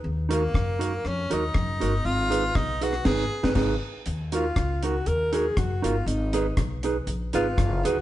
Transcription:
<<
  \new Staff \with { instrumentName = "Clean electric guitar" } { \time 4/4 \key ees \minor \tempo 4 = 120 r8 <ees' ges' bes'>16 r8. <ees' ges' bes'>16 r8. <ees' ges' bes'>16 r8. <ees' ges' bes'>16 r16 | r8 <ees' aes' ces''>16 r8. <ees' aes' ces''>16 r16 <ees' aes' ces''>8 r16 <ees' aes' ces''>16 <ees' aes' ces''>8 r8 | r8 <ees' ges' bes'>16 r8. <ees' ges' bes'>16 r8. <ees' ges' bes'>16 r8. <ees' ges' bes'>16 r16 | r8 <ees' aes' ces''>16 r8. <ees' aes' ces''>16 r8. <ees' aes' ces''>16 r8. <ees' aes' ces''>16 r16 | }
  \new Staff \with { instrumentName = "Alto saxophone" } { \time 4/4 \key ees \minor r1 | r1 | r8 f'4 ges'8 bes'8 aes'8 ges'8 f'8 | ees'4 r4. f'4 ges'8 | }
  \new Staff \with { instrumentName = "Tenor saxophone" } { \time 4/4 \key ees \minor r8 bes4. des'8 ees'4. | f'4 ees'8 ges'8 aes'4 r4 | r1 | r1 | }
  \new Staff \with { instrumentName = "Upright bass" } { \clef bass \time 4/4 \key ees \minor ees,4 ges,4 f,8 ees,8 ges,8 g,,8 | aes,,4 ces,4 aes,,8 r16 aes,,16 aes,,8 r8 | ees,4 des,4 ees,4 ges,8 g,,8 | aes,,4 ces,4 bes,,8 aes,,8 ges,,8 d,8 | }
  \new DrumStaff \with { instrumentName = "Drums" } \drummode { \time 4/4 r8 hh8 <bd ss>8 hh8 ss8 hh8 <bd ss>8 hh8 | r8 hh8 <bd ss>8 hh16 ss16 <cymc bd sn>8. <bd sn>16 <cymc bd sn>4 | hh8 hh8 <hh bd ss>8 hh8 hh8 hh8 <hh bd ss>8 hh8 | hh8 hh8 <hh bd ss>8 hh8 hh8 hh8 <hh bd ss>8 hh8 | }
>>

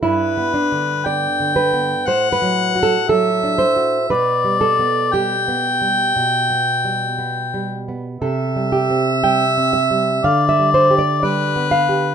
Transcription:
<<
  \new Staff \with { instrumentName = "Harmonica" } { \time 4/4 \key g \major \tempo 4 = 59 b'4 g''4 fis''4 e''4 | d''4 g''2~ g''8 r8 | e''2 d''4 b'4 | }
  \new Staff \with { instrumentName = "Nylon-string guitar" } { \time 4/4 \key g \major << { e'8 d'8 d''8 b'8 c''16 b'8 a'16 a'8 c''8 | b'8 a'8 g'2. | a'8 g'8 g''8 e''8 f''16 e''16 c''16 d''16 d''8 f''8 | } \\ { \tuplet 3/2 { g,8 b8 d8 b8 d8 b8 a,8 fis8 fis'8 fis8 d'8 fis'8 } | \tuplet 3/2 { b,8 g8 b8 g8 b8 g8 b,8 b8 g8 b8 g8 b8 } | \tuplet 3/2 { c8 g8 c'8 g8 c'8 g8 d8 g8 g'8 g8 b8 g'8 } | } >> }
>>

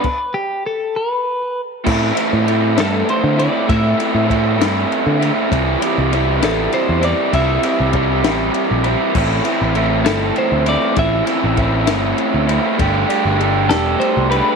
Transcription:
<<
  \new Staff \with { instrumentName = "Clean electric guitar" } { \time 6/8 \key a \minor \tempo 4. = 66 b'8 g'8 a'8 b'4 r8 | r4. a'8 c''8 d''8 | e''2~ e''8 r8 | r4. a'8 c''8 d''8 |
e''2~ e''8 r8 | r4. a'8 c''8 d''8 | e''2~ e''8 r8 | r4. a'8 c''8 b'8 | }
  \new Staff \with { instrumentName = "Overdriven electric guitar" } { \time 6/8 \key a \minor r2. | <a, e a c' e'>8 <a c' e'>8 <e a c' e'>8 <a, e a c' e'>4 <a c' e'>8 | <a, e a c' e'>8 <a c' e'>8 <e a c' e'>8 <a, e a c' e'>4 <a c' e'>8 | <c e g c' e'>8 <g c' e'>8 <e g c' e'>8 <c e g c' e'>4 <g c' e'>8 |
<c e g c' e'>8 <g c' e'>8 <e g c' e'>8 <c e g c' e'>4 <g c' e'>8 | <a, e a c' e'>8 <a c' e'>8 <e a c' e'>8 <a, e a c' e'>4 <a c' e'>8 | <a, e a c' e'>8 <a c' e'>8 <e a c' e'>8 <a, e a c' e'>4 <a c' e'>8 | <g a d' g'>8 <a d' g'>8 <g a d' g'>8 <g a d' g'>4 <a d' g'>8 | }
  \new Staff \with { instrumentName = "Picked electric bass" } { \clef bass \time 6/8 \key a \minor r2. | a,8 r16 a,8. g,8 r16 d8 r16 | a,8 r16 a,8. g,8 r16 d8 r16 | c,8 r16 c,8. a,,8 r16 e,8 r16 |
c,8 r16 c,8. a,,8 r16 bes,,8 r16 | a,,8 r16 a,,8. g,,8 r16 d,8 r16 | a,,8 r16 a,,8. g,,8 r16 d,8 r16 | g,,8 r16 g,,8. e,,8 r16 c,8 r16 | }
  \new DrumStaff \with { instrumentName = "Drums" } \drummode { \time 6/8 <cymc bd>4. r4. | <cymc bd>8 cymr8 cymr8 <cymr sn>8 cymr8 cymr8 | <bd cymr>8 cymr8 <bd cymr>8 <cymr sn>8 cymr8 cymr8 | <bd cymr>8 cymr8 cymr8 <cymr sn>8 cymr8 cymr8 |
<bd cymr>8 cymr8 <bd cymr>8 <cymr sn>8 cymr8 cymr8 | <cymc bd>8 cymr8 cymr8 <cymr sn>8 cymr8 cymr8 | <bd cymr>8 cymr8 <bd cymr>8 <cymr sn>8 cymr8 cymr8 | <bd cymr>8 cymr8 cymr8 <cymr sn>8 cymr8 cymr8 | }
>>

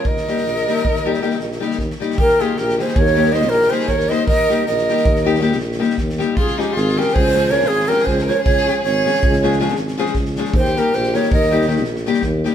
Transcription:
<<
  \new Staff \with { instrumentName = "Ney" } { \time 11/8 \key ees \mixolydian \tempo 4 = 158 ees''1~ ees''8 r4 | bes'8 aes'8 bes'8 c''8 des''4 ees''8 bes'8 c''8 des''8 ees''8 | ees''4 ees''2 r2 r8 | aes'8 g'8 aes'8 bes'8 c''4 des''8 aes'8 bes'8 c''8 des''8 |
des''4 des''2 r2 r8 | c''8 bes'8 c''8 des''8 ees''4 r2 r8 | }
  \new Staff \with { instrumentName = "Violin" } { \time 11/8 \key ees \mixolydian bes'1~ bes'8 r4 | g'8 f'8 g'8 aes'8 bes'4 c''8 g'8 aes'8 bes'8 c''8 | bes'4 bes'2 r2 r8 | f'8 ees'8 f'8 g'8 aes'4 bes'8 f'8 g'8 aes'8 bes'8 |
aes'4 aes'2 r2 r8 | g'8 g'8 g'8 bes'8 bes'4 r2 r8 | }
  \new Staff \with { instrumentName = "Nylon-string guitar" } { \time 11/8 \key ees \mixolydian r8 <g bes ees' g'>8 r8 <g bes ees' g'>8 r8 <g bes ees' g'>8 <g bes ees' g'>8 r8 <g bes ees' g'>8 r8 <g bes ees' g'>8 | r8 <ees g bes ees' g'>8 r8 <ees g bes ees' g'>8 r8 <ees g bes ees' g'>8 <ees g bes ees' g'>8 r8 <ees g bes ees' g'>8 r8 <ees g bes ees' g'>8 | r8 <ees g bes ees' g'>8 r8 <ees g bes ees' g'>8 r8 <ees g bes ees' g'>8 <ees g bes ees' g'>8 r8 <ees g bes ees' g'>8 r8 <ees g bes ees' g'>8 | r8 <f aes des' f' aes'>8 r8 <f aes des' f' aes'>8 r8 <f aes des' f' aes'>8 <f aes des' f' aes'>8 r8 <f aes des' f' aes'>8 r8 <f aes des' f' aes'>8 |
r8 <f aes des' f' aes'>8 r8 <f aes des' f' aes'>8 r8 <f aes des' f' aes'>8 <f aes des' f' aes'>8 r8 <f aes des' f' aes'>8 r8 <f aes des' f' aes'>8 | r8 <ees g bes ees' g'>8 r8 <ees g bes ees' g'>8 r8 <ees g bes ees' g'>8 <ees g bes ees' g'>8 r8 <ees g bes ees' g'>8 r8 <ees g bes ees' g'>8 | }
  \new Staff \with { instrumentName = "Tuba" } { \clef bass \time 11/8 \key ees \mixolydian ees,4 bes,,4 ees,4. bes,,4 ees,8 r8 | ees,4 bes,,4 ees,4. bes,,4 ees,4 | ees,4 bes,,4 ees,4. bes,,4 ees,4 | des,4 aes,,4 des,4. aes,,4 des,4 |
des,4 aes,,4 des,4. aes,,4 des,4 | ees,4 bes,,4 ees,4. bes,,4 ees,4 | }
  \new DrumStaff \with { instrumentName = "Drums" } \drummode { \time 11/8 bd16 sn16 sn16 sn16 sn16 sn16 sn16 sn16 bd16 sn8 sn16 sn16 sn16 sn16 sn16 sn16 sn16 <bd sn>16 sn16 sn16 sn16 | bd16 sn16 sn8 sn16 sn16 sn16 sn16 bd16 sn16 sn16 sn16 sn16 sn16 sn16 sn16 sn16 sn16 <bd sn>16 sn16 sn8 | bd8 sn8 sn16 sn16 sn16 sn16 bd16 sn16 sn16 sn16 sn16 sn16 sn16 sn16 sn16 sn16 <bd sn>16 sn16 sn8 | bd16 sn16 sn8 sn16 sn16 sn16 sn16 bd16 sn16 sn16 sn16 sn16 sn16 sn16 sn16 sn16 sn16 <bd sn>16 sn16 sn8 |
bd16 sn16 sn8 sn8 sn16 sn16 bd16 sn16 sn16 sn16 sn16 sn16 sn16 sn16 sn16 sn16 <bd sn>16 sn16 sn16 sn16 | bd16 sn16 sn8 sn16 sn16 sn16 sn16 bd16 sn16 sn16 sn16 sn16 sn16 sn16 sn16 sn16 sn16 <bd sn>8 sn8 | }
>>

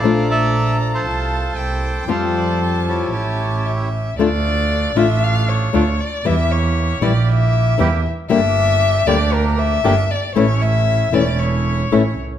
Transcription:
<<
  \new Staff \with { instrumentName = "Violin" } { \time 4/4 \key f \major \tempo 4 = 116 bes''2 a''4 g''4 | a''2 a''4 e''4 | \key d \minor d''4. e''8 f''8 cis''4 d''8 | e''8 cis''4 d''8 e''4. r8 |
e''4. d''8 bes'8 e''4 d''8 | cis''8 e''4 d''8 cis''4. r8 | }
  \new Staff \with { instrumentName = "Bandoneon" } { \time 4/4 \key f \major << { f''8 e''4 d''16 c''2~ c''16 | f''8 d''8 c''8 des''2 r8 | \key d \minor r1 | r1 |
r1 | r1 | } \\ { <a' d''>8 a'4~ a'16 <f' a'>2~ <f' a'>16 | <a' c''>4. <e' g'>2 r8 | r1 | r1 |
r1 | r1 | } >> }
  \new Staff \with { instrumentName = "Bandoneon" } { \time 4/4 \key f \major <a d'>2 <a c' f'>4 <bes c' e'>4 | <a f' g'>2 <a cis' g'>2 | \key d \minor <a d' f'>4. <a d' f'>4. <a d' f'>8 r8 | <bes e' g'>4. <bes e' g'>4. <bes e' g'>8 r8 |
<bes d' g'>4. <bes d' g'>4. <bes d' g'>8 r8 | <a cis' e'>4. <a cis' e'>4. <a cis' e'>8 r8 | }
  \new Staff \with { instrumentName = "Nylon-string guitar" } { \time 4/4 \key f \major <f a d' f'>2 r2 | <f g c' f'>2 r2 | \key d \minor <d a d' f'>8 r4 <d a d' f'>8 r4 <d a d' f'>8 r8 | <e g e'>8 r4 <e g e'>8 r4 <e g e'>8 r8 |
<d g bes d' g'>8 r4 <d g bes d' g'>8 r4 <d g bes d' g'>8 r8 | <e a cis' e'>8 r4 <e a cis' e'>8 r4 <e a cis' e'>8 r8 | }
  \new Staff \with { instrumentName = "Double bass" } { \clef bass \time 4/4 \key f \major bes,,2 c,4 c,4 | f,2 a,,2 | \key d \minor d,4. a,,4. d,8 r8 | e,4. bes,,4. e,8 r8 |
g,,4. d,4. g,,8 r8 | a,,4. e,,4. a,,8 c,8 | }
>>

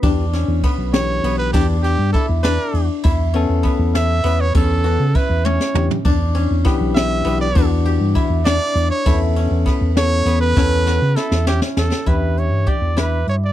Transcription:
<<
  \new Staff \with { instrumentName = "Trumpet" } { \time 5/8 \key e \dorian \tempo 4 = 100 r4. cis''8. b'16 | g'8 g'8 a'8 b'8. r16 | r4. e''8. cis''16 | a'4 b'8 cis''8. r16 |
r4. e''8. d''16~ | d''16 r4 r16 d''8. cis''16~ | cis''16 r4 r16 cis''8. b'16~ | b'4 a'8 g'8 a'8 |
b'8 cis''8 d''8 b'8 cis''16 d''16 | }
  \new Staff \with { instrumentName = "Guzheng" } { \time 5/8 \key e \dorian d'8 cis'8 b4 b8 | d'8 g'8 e'8 d'4 | e'8 cis'8 b4 b8 | cis'8 fis'8 e'8 cis'4 |
d'8 cis'8 b4 b8 | d'8 g'8 e'8 d'4 | e'8 cis'8 b4 b8 | cis'8 fis'8 e'8 cis'4 |
e'4 g'8 e'4 | }
  \new Staff \with { instrumentName = "Tine electric piano" } { \time 5/8 \key e \dorian <e d' g'>8 r4 <e d' g'>4 | <e d' g'>8 r2 | r8 <b cis' a'>4. <b cis' b'>8 | r8 <b cis' a'>8 r4 <e d' g'>8 |
r4 <e d' g'>4 <e d' g'>8 | <e d' fis'>4. r4 | <b cis' a'>4. <b cis' a'>4 | <b cis' a'>8 r2 |
<e d' g'>4. <e d' e'>8 r8 | }
  \new Staff \with { instrumentName = "Fingered electric bass" } { \clef bass \time 5/8 \key e \dorian e,8. e,16 r16 b,,8. b,,8 | e,8. g,16 r16 e,8 r16 e,16 r16 | e,8. e,16 r16 e,8. e,8 | e,8. cis16 r16 e,8 r16 e,16 r16 |
e,8. e,16 r16 b,,8. b,,8 | e,8. g,16 r16 e,8 r16 e,16 r16 | e,8. e,16 r16 e,8. e,8 | e,8. cis16 r16 e,8 r16 e,16 r16 |
e,8. g,16 r16 e,8. g,8 | }
  \new DrumStaff \with { instrumentName = "Drums" } \drummode { \time 5/8 <bd cymr>8 <cymr sn>8 <bd cymr>8 <cymr sn>8 cymr8 | <bd cymr>8 <cymr sn>8 <bd cymr>8 <cymr sn>8 cymr8 | <bd cymr>8 cymr8 <bd cymr>8 <cymr sn>8 cymr8 | <bd cymr>8 cymr8 <bd cymr>8 tommh16 sn16 toml16 tomfh16 |
<bd cymr>8 cymr8 <bd cymr sn>8 <cymr sn>8 cymr8 | <bd cymr>8 cymr8 <bd cymr>8 <cymr sn>8 cymr8 | <bd cymr>8 cymr8 <bd cymr sn>8 <cymr sn>8 cymr8 | <bd sn>8 sn8 sn16 sn16 sn16 sn16 sn16 sn16 |
<hh bd>8 hh8 <hh bd>8 <hh sn>8 hh8 | }
>>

